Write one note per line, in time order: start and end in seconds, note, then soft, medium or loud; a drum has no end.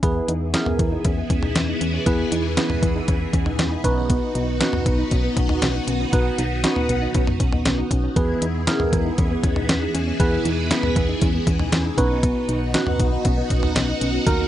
0.03 0.21 E2 loud
0.03 3.81 E3 medium
0.03 0.23 B3 medium
0.03 0.31 B3 medium
0.03 3.81 B3 medium
0.03 0.31 E4 medium
0.03 3.81 E4 medium
0.03 0.31 G#4 medium
0.03 3.81 G#4 medium
0.03 0.31 B4 medium
0.03 kick loud
0.03 closed hi-hat medium
0.28 0.55 E2 loud
0.28 0.49 D#4 medium
0.28 closed hi-hat medium
0.54 1.10 B3 medium
0.54 0.64 C#4 medium
0.54 1.10 E4 medium
0.54 1.10 G#4 medium
0.54 1.10 A#4 medium
0.54 snare loud
0.54 closed hi-hat medium
0.66 0.77 B3 medium
0.66 mid tom medium
0.79 0.97 E2 medium
0.79 0.89 B3 medium
0.79 kick medium
0.79 closed hi-hat medium
0.92 1.02 D#4 medium
1.05 1.23 E2 loud
1.05 1.15 C#4 medium
1.05 kick loud
1.05 closed hi-hat medium
1.17 1.28 B3 medium
1.30 1.48 E2 loud
1.30 1.40 C#4 medium
1.30 kick medium
1.30 closed hi-hat medium
1.43 1.53 D#4 medium
1.43 mid tom medium
1.55 1.73 E2 medium
1.55 1.66 C#4 medium
1.55 snare loud
1.55 closed hi-hat medium
1.68 1.78 D#4 medium
1.81 1.99 E2 loud
1.81 1.91 C#4 medium
1.81 closed hi-hat medium
1.94 2.04 C#4 medium
2.06 2.24 E2 loud
2.06 2.34 B3 medium
2.06 2.27 B3 loud
2.06 2.34 E4 medium
2.06 2.34 G#4 medium
2.06 2.34 B4 medium
2.06 kick loud
2.06 closed hi-hat medium
2.32 2.59 E2 loud
2.32 2.52 D#4 medium
2.32 closed hi-hat medium
2.57 3.13 B3 medium
2.57 2.67 C#4 medium
2.57 3.13 E4 medium
2.57 3.13 G#4 medium
2.57 3.13 B4 medium
2.57 snare loud
2.57 closed hi-hat medium
2.70 2.80 B3 medium
2.70 mid tom medium
2.83 3.00 E2 loud
2.83 2.93 B3 medium
2.83 kick medium
2.83 closed hi-hat medium
2.95 3.06 D#4 medium
3.08 3.26 E2 loud
3.08 3.18 C#4 medium
3.08 kick loud
3.08 closed hi-hat medium
3.21 3.31 B3 medium
3.33 3.51 E2 loud
3.33 3.44 C#4 medium
3.33 kick medium
3.33 closed hi-hat medium
3.46 3.56 D#4 medium
3.46 mid tom medium
3.59 3.77 E2 loud
3.59 3.69 C#4 medium
3.59 snare loud
3.59 closed hi-hat medium
3.72 3.82 D#4 medium
3.84 4.20 B1 loud
3.84 8.12 B3 medium
3.84 4.45 B3 medium
3.84 3.95 C#4 medium
3.84 8.12 D#4 medium
3.84 4.45 D#4 medium
3.84 8.12 F#4 loud
3.84 4.45 F#4 medium
3.84 4.45 B4 loud
3.84 kick medium
3.84 closed hi-hat medium
3.97 4.07 C#4 medium
4.10 4.30 B3 loud
4.10 kick loud
4.10 closed hi-hat medium
4.35 4.62 B1 loud
4.35 4.56 D#4 medium
4.35 closed hi-hat medium
4.60 5.17 B3 medium
4.60 4.71 C#4 medium
4.60 5.17 D#4 medium
4.60 5.17 F#4 medium
4.60 5.17 B4 medium
4.60 snare loud
4.60 closed hi-hat medium
4.73 4.83 B3 medium
4.73 mid tom medium
4.86 5.04 B1 loud
4.86 4.96 B3 medium
4.86 kick medium
4.86 closed hi-hat medium
4.99 5.09 D#4 medium
5.11 5.29 B1 loud
5.11 5.22 C#4 medium
5.11 kick medium
5.11 closed hi-hat medium
5.24 5.34 B3 medium
5.37 5.55 B1 loud
5.37 5.47 C#4 medium
5.37 kick medium
5.37 closed hi-hat medium
5.49 5.60 D#4 medium
5.49 mid tom medium
5.62 5.80 B1 medium
5.62 5.72 C#4 medium
5.62 snare loud
5.62 closed hi-hat medium
5.75 5.85 D#4 medium
5.87 6.05 B1 loud
5.87 5.98 C#4 medium
5.87 closed hi-hat medium
6.00 6.11 C#4 medium
6.13 6.31 B1 loud
6.13 6.41 B3 medium
6.13 6.34 B3 loud
6.13 6.41 D#4 medium
6.13 6.41 F#4 medium
6.13 6.41 B4 medium
6.13 kick loud
6.13 closed hi-hat medium
6.38 6.65 B1 loud
6.38 6.59 D#4 medium
6.38 closed hi-hat medium
6.64 7.20 B3 medium
6.64 6.74 C#4 medium
6.64 7.20 D#4 medium
6.64 7.20 F#4 medium
6.64 7.20 B4 medium
6.64 snare loud
6.64 closed hi-hat medium
6.76 6.87 B3 medium
6.76 mid tom medium
6.89 7.07 B1 loud
6.89 7.00 B3 medium
6.89 closed hi-hat medium
7.02 7.12 D#4 medium
7.14 7.33 B1 loud
7.14 7.25 C#4 medium
7.14 kick loud
7.14 closed hi-hat medium
7.27 7.38 B3 medium
7.27 mid tom loud
7.40 7.58 B1 loud
7.40 7.50 C#4 medium
7.40 kick medium
7.40 closed hi-hat medium
7.52 7.63 D#4 medium
7.52 mid tom medium
7.65 7.83 B1 medium
7.65 7.76 C#4 medium
7.65 snare loud
7.65 closed hi-hat medium
7.78 7.89 D#4 medium
7.91 8.09 B1 loud
7.91 8.01 C#4 medium
7.91 kick medium
7.91 closed hi-hat medium
8.04 8.14 C#4 medium
8.16 8.34 E2 loud
8.16 11.94 E3 medium
8.16 8.37 B3 medium
8.16 8.45 B3 medium
8.16 11.94 B3 medium
8.16 8.45 E4 medium
8.16 11.94 E4 medium
8.16 8.45 G#4 medium
8.16 11.94 G#4 medium
8.16 8.45 B4 medium
8.16 kick loud
8.16 closed hi-hat medium
8.42 8.69 E2 loud
8.42 8.62 D#4 medium
8.42 closed hi-hat medium
8.67 9.24 B3 medium
8.67 8.78 C#4 medium
8.67 9.24 E4 medium
8.67 9.24 G#4 medium
8.67 9.24 A#4 medium
8.67 snare loud
8.67 closed hi-hat medium
8.80 8.90 B3 medium
8.80 mid tom medium
8.93 9.11 E2 loud
8.93 9.03 B3 medium
8.93 kick medium
8.93 closed hi-hat medium
9.05 9.16 D#4 medium
9.18 9.36 E2 loud
9.18 9.28 C#4 medium
9.18 kick loud
9.18 closed hi-hat medium
9.31 9.41 B3 medium
9.44 9.61 E2 loud
9.44 9.54 C#4 medium
9.44 kick medium
9.44 closed hi-hat medium
9.56 9.67 D#4 medium
9.56 mid tom medium
9.69 9.87 E2 medium
9.69 9.79 C#4 medium
9.69 snare loud
9.69 closed hi-hat medium
9.82 9.92 D#4 medium
9.94 10.12 E2 loud
9.94 10.05 C#4 medium
9.94 closed hi-hat medium
10.07 10.17 C#4 medium
10.20 10.38 E2 loud
10.20 10.48 B3 medium
10.20 10.40 B3 loud
10.20 10.48 E4 medium
10.20 10.48 G#4 medium
10.20 10.48 B4 medium
10.20 kick loud
10.20 closed hi-hat medium
10.45 10.72 E2 loud
10.45 10.66 D#4 medium
10.45 closed hi-hat medium
10.71 11.27 B3 medium
10.71 10.81 C#4 medium
10.71 11.27 E4 medium
10.71 11.27 G#4 medium
10.71 11.27 B4 medium
10.71 snare loud
10.71 closed hi-hat medium
10.83 10.94 B3 medium
10.83 mid tom medium
10.96 11.14 E2 loud
10.96 11.06 B3 medium
10.96 kick medium
10.96 closed hi-hat medium
11.09 11.19 D#4 medium
11.21 11.40 E2 loud
11.21 11.32 C#4 medium
11.21 kick loud
11.21 closed hi-hat medium
11.34 11.45 B3 medium
11.47 11.65 E2 loud
11.47 11.57 C#4 medium
11.47 kick medium
11.47 closed hi-hat medium
11.59 11.70 D#4 medium
11.59 mid tom medium
11.72 11.90 E2 loud
11.72 11.83 C#4 medium
11.72 snare loud
11.72 closed hi-hat medium
11.85 11.95 D#4 medium
11.98 12.33 B1 loud
11.98 12.59 B3 medium
11.98 14.24 B3 medium
11.98 12.08 C#4 medium
11.98 12.59 D#4 medium
11.98 14.48 D#4 medium
11.98 12.59 F#4 medium
11.98 14.48 F#4 medium
11.98 12.59 B4 loud
11.98 kick medium
11.98 closed hi-hat medium
12.11 12.21 C#4 medium
12.23 12.44 B3 loud
12.23 kick loud
12.23 closed hi-hat medium
12.49 12.75 B1 loud
12.49 12.69 D#4 medium
12.49 closed hi-hat medium
12.74 13.30 B3 medium
12.74 12.84 C#4 medium
12.74 13.30 D#4 medium
12.74 13.30 F#4 medium
12.74 13.30 B4 loud
12.74 snare loud
12.74 closed hi-hat medium
12.87 12.97 B3 medium
12.87 mid tom medium
13.00 13.17 B1 loud
13.00 13.10 B3 medium
13.00 kick medium
13.00 closed hi-hat medium
13.12 13.23 D#4 medium
13.25 13.43 B1 loud
13.25 13.35 C#4 medium
13.25 kick loud
13.25 closed hi-hat medium
13.38 13.48 B3 medium
13.50 13.68 B1 loud
13.50 13.61 C#4 medium
13.50 kick medium
13.50 closed hi-hat medium
13.63 13.73 D#4 medium
13.63 mid tom medium
13.76 13.94 B1 loud
13.76 13.86 C#4 medium
13.76 snare loud
13.76 closed hi-hat medium
13.89 13.99 D#4 medium
14.01 14.19 B1 loud
14.01 14.12 C#4 medium
14.01 closed hi-hat medium
14.14 14.24 C#4 medium
14.27 14.44 D#2 loud
14.27 14.48 D#3 medium
14.27 14.48 A#3 medium
14.27 14.48 D#4 medium
14.27 14.47 D#4 medium
14.27 14.48 F#4 medium
14.27 14.48 A#4 medium
14.27 kick loud
14.27 closed hi-hat medium